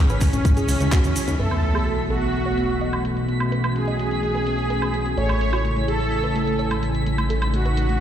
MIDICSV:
0, 0, Header, 1, 9, 480
1, 0, Start_track
1, 0, Tempo, 472441
1, 1417, Time_signature, 4, 2, 24, 8
1, 8129, End_track
2, 0, Start_track
2, 0, Title_t, "Synth texture"
2, 0, Program_c, 0, 99
2, 0, Note_on_c, 0, 95, 83
2, 1405, Note_off_c, 0, 95, 0
2, 1417, Note_on_c, 0, 95, 82
2, 8129, Note_off_c, 0, 95, 0
2, 8129, End_track
3, 0, Start_track
3, 0, Title_t, "Supersaw synth"
3, 0, Program_c, 1, 81
3, 0, Note_on_c, 1, 61, 103
3, 1321, Note_off_c, 1, 61, 0
3, 1417, Note_on_c, 1, 69, 94
3, 2041, Note_off_c, 1, 69, 0
3, 2138, Note_on_c, 1, 66, 95
3, 3002, Note_off_c, 1, 66, 0
3, 3817, Note_on_c, 1, 68, 97
3, 5162, Note_off_c, 1, 68, 0
3, 5257, Note_on_c, 1, 73, 98
3, 5882, Note_off_c, 1, 73, 0
3, 5976, Note_on_c, 1, 69, 93
3, 6841, Note_off_c, 1, 69, 0
3, 7657, Note_on_c, 1, 66, 98
3, 8129, Note_off_c, 1, 66, 0
3, 8129, End_track
4, 0, Start_track
4, 0, Title_t, "Grand piano"
4, 0, Program_c, 2, 0
4, 1417, Note_on_c, 2, 57, 67
4, 1417, Note_on_c, 2, 64, 62
4, 1417, Note_on_c, 2, 71, 72
4, 5228, Note_off_c, 2, 64, 0
4, 5228, Note_off_c, 2, 71, 0
4, 5229, Note_off_c, 2, 57, 0
4, 5257, Note_on_c, 2, 57, 68
4, 5257, Note_on_c, 2, 73, 76
4, 5257, Note_on_c, 2, 80, 64
4, 8129, Note_off_c, 2, 57, 0
4, 8129, Note_off_c, 2, 73, 0
4, 8129, Note_off_c, 2, 80, 0
4, 8129, End_track
5, 0, Start_track
5, 0, Title_t, "Analog synth pad"
5, 0, Program_c, 3, 89
5, 0, Note_on_c, 3, 49, 79
5, 0, Note_on_c, 3, 52, 80
5, 0, Note_on_c, 3, 56, 72
5, 0, Note_on_c, 3, 64, 89
5, 1377, Note_off_c, 3, 52, 0
5, 1379, Note_off_c, 3, 49, 0
5, 1379, Note_off_c, 3, 56, 0
5, 1379, Note_off_c, 3, 64, 0
5, 1417, Note_on_c, 3, 52, 76
5, 1417, Note_on_c, 3, 57, 67
5, 1417, Note_on_c, 3, 59, 71
5, 1417, Note_on_c, 3, 66, 83
5, 3318, Note_off_c, 3, 59, 0
5, 3337, Note_on_c, 3, 61, 70
5, 5218, Note_off_c, 3, 52, 0
5, 5219, Note_off_c, 3, 66, 0
5, 5238, Note_off_c, 3, 61, 0
5, 5257, Note_on_c, 3, 49, 77
5, 5257, Note_on_c, 3, 64, 82
5, 5258, Note_on_c, 3, 80, 71
5, 7158, Note_off_c, 3, 64, 0
5, 7178, Note_on_c, 3, 63, 83
5, 8129, Note_off_c, 3, 49, 0
5, 8129, Note_off_c, 3, 57, 0
5, 8129, Note_off_c, 3, 63, 0
5, 8129, Note_off_c, 3, 80, 0
5, 8129, End_track
6, 0, Start_track
6, 0, Title_t, "Synth pluck"
6, 0, Program_c, 4, 84
6, 98, Note_on_c, 4, 71, 95
6, 168, Note_off_c, 4, 71, 0
6, 217, Note_on_c, 4, 61, 64
6, 288, Note_off_c, 4, 61, 0
6, 338, Note_on_c, 4, 61, 65
6, 408, Note_off_c, 4, 61, 0
6, 457, Note_on_c, 4, 61, 62
6, 528, Note_off_c, 4, 61, 0
6, 577, Note_on_c, 4, 68, 97
6, 647, Note_off_c, 4, 68, 0
6, 697, Note_on_c, 4, 61, 62
6, 767, Note_off_c, 4, 61, 0
6, 818, Note_on_c, 4, 61, 62
6, 887, Note_off_c, 4, 61, 0
6, 937, Note_on_c, 4, 66, 94
6, 1008, Note_off_c, 4, 66, 0
6, 1057, Note_on_c, 4, 61, 64
6, 1127, Note_off_c, 4, 61, 0
6, 1177, Note_on_c, 4, 61, 66
6, 1247, Note_off_c, 4, 61, 0
6, 1298, Note_on_c, 4, 61, 65
6, 1367, Note_off_c, 4, 61, 0
6, 1417, Note_on_c, 4, 71, 91
6, 1487, Note_off_c, 4, 71, 0
6, 1537, Note_on_c, 4, 59, 60
6, 1607, Note_off_c, 4, 59, 0
6, 1657, Note_on_c, 4, 59, 61
6, 1728, Note_off_c, 4, 59, 0
6, 1777, Note_on_c, 4, 68, 87
6, 1847, Note_off_c, 4, 68, 0
6, 1897, Note_on_c, 4, 59, 59
6, 1967, Note_off_c, 4, 59, 0
6, 2017, Note_on_c, 4, 59, 57
6, 2087, Note_off_c, 4, 59, 0
6, 2137, Note_on_c, 4, 69, 86
6, 2207, Note_off_c, 4, 69, 0
6, 2257, Note_on_c, 4, 59, 58
6, 2327, Note_off_c, 4, 59, 0
6, 2377, Note_on_c, 4, 59, 57
6, 2448, Note_off_c, 4, 59, 0
6, 2498, Note_on_c, 4, 73, 89
6, 2568, Note_off_c, 4, 73, 0
6, 2617, Note_on_c, 4, 59, 59
6, 2688, Note_off_c, 4, 59, 0
6, 2738, Note_on_c, 4, 59, 58
6, 2808, Note_off_c, 4, 59, 0
6, 2858, Note_on_c, 4, 75, 88
6, 2928, Note_off_c, 4, 75, 0
6, 2978, Note_on_c, 4, 59, 59
6, 3048, Note_off_c, 4, 59, 0
6, 3098, Note_on_c, 4, 59, 60
6, 3168, Note_off_c, 4, 59, 0
6, 3337, Note_on_c, 4, 59, 61
6, 3408, Note_off_c, 4, 59, 0
6, 3458, Note_on_c, 4, 59, 61
6, 3528, Note_off_c, 4, 59, 0
6, 3577, Note_on_c, 4, 71, 87
6, 3648, Note_off_c, 4, 71, 0
6, 3698, Note_on_c, 4, 59, 61
6, 3768, Note_off_c, 4, 59, 0
6, 3817, Note_on_c, 4, 59, 59
6, 3888, Note_off_c, 4, 59, 0
6, 3938, Note_on_c, 4, 75, 87
6, 4007, Note_off_c, 4, 75, 0
6, 4057, Note_on_c, 4, 59, 60
6, 4128, Note_off_c, 4, 59, 0
6, 4178, Note_on_c, 4, 59, 62
6, 4247, Note_off_c, 4, 59, 0
6, 4297, Note_on_c, 4, 59, 58
6, 4368, Note_off_c, 4, 59, 0
6, 4417, Note_on_c, 4, 71, 87
6, 4487, Note_off_c, 4, 71, 0
6, 4537, Note_on_c, 4, 59, 59
6, 4608, Note_off_c, 4, 59, 0
6, 4657, Note_on_c, 4, 59, 56
6, 4727, Note_off_c, 4, 59, 0
6, 4777, Note_on_c, 4, 71, 86
6, 4847, Note_off_c, 4, 71, 0
6, 4897, Note_on_c, 4, 59, 57
6, 4967, Note_off_c, 4, 59, 0
6, 5017, Note_on_c, 4, 59, 60
6, 5087, Note_off_c, 4, 59, 0
6, 5137, Note_on_c, 4, 59, 60
6, 5207, Note_off_c, 4, 59, 0
6, 5256, Note_on_c, 4, 69, 93
6, 5327, Note_off_c, 4, 69, 0
6, 5377, Note_on_c, 4, 57, 60
6, 5447, Note_off_c, 4, 57, 0
6, 5497, Note_on_c, 4, 57, 60
6, 5567, Note_off_c, 4, 57, 0
6, 5617, Note_on_c, 4, 66, 88
6, 5687, Note_off_c, 4, 66, 0
6, 5736, Note_on_c, 4, 57, 58
6, 5807, Note_off_c, 4, 57, 0
6, 5857, Note_on_c, 4, 57, 59
6, 5927, Note_off_c, 4, 57, 0
6, 5977, Note_on_c, 4, 68, 85
6, 6047, Note_off_c, 4, 68, 0
6, 6097, Note_on_c, 4, 57, 60
6, 6167, Note_off_c, 4, 57, 0
6, 6216, Note_on_c, 4, 57, 57
6, 6287, Note_off_c, 4, 57, 0
6, 6337, Note_on_c, 4, 71, 90
6, 6407, Note_off_c, 4, 71, 0
6, 6457, Note_on_c, 4, 57, 60
6, 6527, Note_off_c, 4, 57, 0
6, 6577, Note_on_c, 4, 57, 58
6, 6647, Note_off_c, 4, 57, 0
6, 6696, Note_on_c, 4, 73, 86
6, 6767, Note_off_c, 4, 73, 0
6, 6817, Note_on_c, 4, 57, 61
6, 6887, Note_off_c, 4, 57, 0
6, 6937, Note_on_c, 4, 57, 61
6, 7007, Note_off_c, 4, 57, 0
6, 7177, Note_on_c, 4, 57, 59
6, 7248, Note_off_c, 4, 57, 0
6, 7298, Note_on_c, 4, 57, 62
6, 7368, Note_off_c, 4, 57, 0
6, 7417, Note_on_c, 4, 69, 87
6, 7488, Note_off_c, 4, 69, 0
6, 7538, Note_on_c, 4, 57, 59
6, 7608, Note_off_c, 4, 57, 0
6, 7657, Note_on_c, 4, 57, 60
6, 7727, Note_off_c, 4, 57, 0
6, 7777, Note_on_c, 4, 71, 86
6, 7847, Note_off_c, 4, 71, 0
6, 7897, Note_on_c, 4, 57, 60
6, 7968, Note_off_c, 4, 57, 0
6, 8018, Note_on_c, 4, 57, 60
6, 8087, Note_off_c, 4, 57, 0
6, 8129, End_track
7, 0, Start_track
7, 0, Title_t, "Analog synth bass"
7, 0, Program_c, 5, 38
7, 97, Note_on_c, 5, 32, 75
7, 179, Note_off_c, 5, 32, 0
7, 337, Note_on_c, 5, 32, 81
7, 418, Note_off_c, 5, 32, 0
7, 696, Note_on_c, 5, 37, 96
7, 778, Note_off_c, 5, 37, 0
7, 817, Note_on_c, 5, 37, 82
7, 898, Note_off_c, 5, 37, 0
7, 1057, Note_on_c, 5, 39, 73
7, 1138, Note_off_c, 5, 39, 0
7, 1297, Note_on_c, 5, 39, 80
7, 1378, Note_off_c, 5, 39, 0
7, 1416, Note_on_c, 5, 35, 82
7, 5233, Note_off_c, 5, 35, 0
7, 5257, Note_on_c, 5, 33, 81
7, 8129, Note_off_c, 5, 33, 0
7, 8129, End_track
8, 0, Start_track
8, 0, Title_t, "Sub drop"
8, 0, Program_c, 6, 103
8, 1417, Note_on_c, 6, 60, 61
8, 3337, Note_off_c, 6, 60, 0
8, 8129, End_track
9, 0, Start_track
9, 0, Title_t, "Drums"
9, 94, Note_on_c, 9, 82, 31
9, 97, Note_on_c, 9, 42, 41
9, 196, Note_off_c, 9, 82, 0
9, 199, Note_off_c, 9, 42, 0
9, 211, Note_on_c, 9, 82, 76
9, 217, Note_on_c, 9, 36, 58
9, 217, Note_on_c, 9, 39, 37
9, 217, Note_on_c, 9, 46, 99
9, 313, Note_off_c, 9, 82, 0
9, 318, Note_off_c, 9, 39, 0
9, 318, Note_off_c, 9, 46, 0
9, 319, Note_off_c, 9, 36, 0
9, 336, Note_on_c, 9, 82, 34
9, 337, Note_on_c, 9, 42, 40
9, 437, Note_off_c, 9, 82, 0
9, 439, Note_off_c, 9, 42, 0
9, 457, Note_on_c, 9, 36, 112
9, 457, Note_on_c, 9, 42, 70
9, 467, Note_on_c, 9, 82, 48
9, 558, Note_off_c, 9, 42, 0
9, 559, Note_off_c, 9, 36, 0
9, 569, Note_off_c, 9, 82, 0
9, 577, Note_on_c, 9, 42, 42
9, 580, Note_on_c, 9, 82, 34
9, 679, Note_off_c, 9, 42, 0
9, 681, Note_off_c, 9, 82, 0
9, 697, Note_on_c, 9, 46, 99
9, 697, Note_on_c, 9, 82, 89
9, 798, Note_off_c, 9, 46, 0
9, 798, Note_off_c, 9, 82, 0
9, 817, Note_on_c, 9, 42, 39
9, 822, Note_on_c, 9, 82, 39
9, 919, Note_off_c, 9, 42, 0
9, 923, Note_off_c, 9, 82, 0
9, 937, Note_on_c, 9, 36, 111
9, 937, Note_on_c, 9, 39, 118
9, 937, Note_on_c, 9, 42, 68
9, 941, Note_on_c, 9, 82, 51
9, 1038, Note_off_c, 9, 39, 0
9, 1038, Note_off_c, 9, 42, 0
9, 1039, Note_off_c, 9, 36, 0
9, 1043, Note_off_c, 9, 82, 0
9, 1057, Note_on_c, 9, 42, 39
9, 1060, Note_on_c, 9, 82, 32
9, 1159, Note_off_c, 9, 42, 0
9, 1161, Note_off_c, 9, 82, 0
9, 1177, Note_on_c, 9, 46, 100
9, 1178, Note_on_c, 9, 82, 90
9, 1278, Note_off_c, 9, 46, 0
9, 1279, Note_off_c, 9, 82, 0
9, 1297, Note_on_c, 9, 42, 41
9, 1298, Note_on_c, 9, 82, 35
9, 1399, Note_off_c, 9, 42, 0
9, 1400, Note_off_c, 9, 82, 0
9, 1417, Note_on_c, 9, 42, 61
9, 1519, Note_off_c, 9, 42, 0
9, 1537, Note_on_c, 9, 42, 35
9, 1537, Note_on_c, 9, 76, 57
9, 1639, Note_off_c, 9, 42, 0
9, 1639, Note_off_c, 9, 76, 0
9, 1657, Note_on_c, 9, 42, 81
9, 1758, Note_off_c, 9, 42, 0
9, 1778, Note_on_c, 9, 42, 36
9, 1778, Note_on_c, 9, 76, 73
9, 1879, Note_off_c, 9, 42, 0
9, 1879, Note_off_c, 9, 76, 0
9, 1897, Note_on_c, 9, 42, 59
9, 1999, Note_off_c, 9, 42, 0
9, 2017, Note_on_c, 9, 42, 35
9, 2119, Note_off_c, 9, 42, 0
9, 2137, Note_on_c, 9, 42, 84
9, 2239, Note_off_c, 9, 42, 0
9, 2258, Note_on_c, 9, 42, 34
9, 2359, Note_off_c, 9, 42, 0
9, 2377, Note_on_c, 9, 42, 59
9, 2479, Note_off_c, 9, 42, 0
9, 2497, Note_on_c, 9, 42, 35
9, 2599, Note_off_c, 9, 42, 0
9, 2617, Note_on_c, 9, 42, 83
9, 2719, Note_off_c, 9, 42, 0
9, 2738, Note_on_c, 9, 42, 35
9, 2839, Note_off_c, 9, 42, 0
9, 2857, Note_on_c, 9, 42, 59
9, 2959, Note_off_c, 9, 42, 0
9, 2978, Note_on_c, 9, 42, 35
9, 2978, Note_on_c, 9, 76, 55
9, 3079, Note_off_c, 9, 42, 0
9, 3079, Note_off_c, 9, 76, 0
9, 3097, Note_on_c, 9, 42, 83
9, 3199, Note_off_c, 9, 42, 0
9, 3218, Note_on_c, 9, 42, 35
9, 3319, Note_off_c, 9, 42, 0
9, 3337, Note_on_c, 9, 42, 59
9, 3439, Note_off_c, 9, 42, 0
9, 3458, Note_on_c, 9, 42, 34
9, 3458, Note_on_c, 9, 76, 57
9, 3560, Note_off_c, 9, 42, 0
9, 3560, Note_off_c, 9, 76, 0
9, 3578, Note_on_c, 9, 42, 79
9, 3679, Note_off_c, 9, 42, 0
9, 3698, Note_on_c, 9, 42, 35
9, 3698, Note_on_c, 9, 76, 71
9, 3800, Note_off_c, 9, 42, 0
9, 3800, Note_off_c, 9, 76, 0
9, 3818, Note_on_c, 9, 42, 59
9, 3919, Note_off_c, 9, 42, 0
9, 3938, Note_on_c, 9, 42, 34
9, 4040, Note_off_c, 9, 42, 0
9, 4058, Note_on_c, 9, 42, 82
9, 4159, Note_off_c, 9, 42, 0
9, 4178, Note_on_c, 9, 42, 35
9, 4280, Note_off_c, 9, 42, 0
9, 4297, Note_on_c, 9, 42, 59
9, 4399, Note_off_c, 9, 42, 0
9, 4418, Note_on_c, 9, 42, 35
9, 4520, Note_off_c, 9, 42, 0
9, 4537, Note_on_c, 9, 42, 81
9, 4639, Note_off_c, 9, 42, 0
9, 4658, Note_on_c, 9, 42, 34
9, 4760, Note_off_c, 9, 42, 0
9, 4777, Note_on_c, 9, 42, 59
9, 4879, Note_off_c, 9, 42, 0
9, 4898, Note_on_c, 9, 42, 35
9, 4898, Note_on_c, 9, 76, 53
9, 5000, Note_off_c, 9, 42, 0
9, 5000, Note_off_c, 9, 76, 0
9, 5018, Note_on_c, 9, 42, 81
9, 5119, Note_off_c, 9, 42, 0
9, 5138, Note_on_c, 9, 42, 35
9, 5240, Note_off_c, 9, 42, 0
9, 5257, Note_on_c, 9, 42, 57
9, 5359, Note_off_c, 9, 42, 0
9, 5378, Note_on_c, 9, 42, 34
9, 5378, Note_on_c, 9, 76, 55
9, 5479, Note_off_c, 9, 42, 0
9, 5479, Note_off_c, 9, 76, 0
9, 5497, Note_on_c, 9, 42, 77
9, 5599, Note_off_c, 9, 42, 0
9, 5618, Note_on_c, 9, 42, 33
9, 5618, Note_on_c, 9, 76, 69
9, 5719, Note_off_c, 9, 42, 0
9, 5719, Note_off_c, 9, 76, 0
9, 5737, Note_on_c, 9, 42, 57
9, 5839, Note_off_c, 9, 42, 0
9, 5857, Note_on_c, 9, 42, 34
9, 5959, Note_off_c, 9, 42, 0
9, 5977, Note_on_c, 9, 42, 80
9, 6079, Note_off_c, 9, 42, 0
9, 6097, Note_on_c, 9, 42, 33
9, 6199, Note_off_c, 9, 42, 0
9, 6217, Note_on_c, 9, 42, 57
9, 6319, Note_off_c, 9, 42, 0
9, 6337, Note_on_c, 9, 42, 34
9, 6439, Note_off_c, 9, 42, 0
9, 6457, Note_on_c, 9, 42, 76
9, 6558, Note_off_c, 9, 42, 0
9, 6577, Note_on_c, 9, 42, 33
9, 6679, Note_off_c, 9, 42, 0
9, 6697, Note_on_c, 9, 42, 56
9, 6799, Note_off_c, 9, 42, 0
9, 6818, Note_on_c, 9, 42, 32
9, 6818, Note_on_c, 9, 76, 53
9, 6919, Note_off_c, 9, 42, 0
9, 6919, Note_off_c, 9, 76, 0
9, 6937, Note_on_c, 9, 42, 78
9, 7039, Note_off_c, 9, 42, 0
9, 7058, Note_on_c, 9, 42, 34
9, 7160, Note_off_c, 9, 42, 0
9, 7177, Note_on_c, 9, 42, 56
9, 7279, Note_off_c, 9, 42, 0
9, 7298, Note_on_c, 9, 42, 34
9, 7298, Note_on_c, 9, 76, 55
9, 7400, Note_off_c, 9, 42, 0
9, 7400, Note_off_c, 9, 76, 0
9, 7417, Note_on_c, 9, 42, 77
9, 7519, Note_off_c, 9, 42, 0
9, 7538, Note_on_c, 9, 42, 34
9, 7538, Note_on_c, 9, 76, 72
9, 7639, Note_off_c, 9, 42, 0
9, 7639, Note_off_c, 9, 76, 0
9, 7657, Note_on_c, 9, 42, 56
9, 7759, Note_off_c, 9, 42, 0
9, 7778, Note_on_c, 9, 42, 34
9, 7879, Note_off_c, 9, 42, 0
9, 7897, Note_on_c, 9, 42, 77
9, 7999, Note_off_c, 9, 42, 0
9, 8018, Note_on_c, 9, 42, 33
9, 8119, Note_off_c, 9, 42, 0
9, 8129, End_track
0, 0, End_of_file